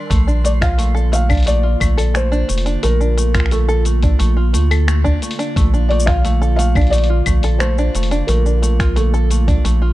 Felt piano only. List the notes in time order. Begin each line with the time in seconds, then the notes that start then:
0.45 D5
0.61 F5
1.13 F5
1.47 D5
2.15 C5
2.83 A#4
3.51 A4
5.89 D5
6.06 F5
6.56 F5
6.90 D5
7.59 C5
8.27 A#4
8.96 A4